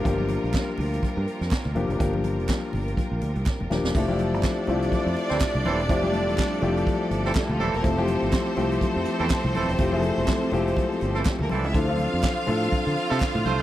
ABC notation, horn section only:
X:1
M:4/4
L:1/16
Q:"Swing 16ths" 1/4=123
K:F
V:1 name="Horn section"
z16 | z16 | z8 z3 [E,CA] z2 [E,CA]2 | z8 z3 [E,CA] z2 [E,CA]2 |
z8 z3 [E,CA] z2 [E,CA]2 | z8 z3 [E,CA] z2 [E,CA]2 | z8 z3 [F,EA] z2 [A,Fc]2 |]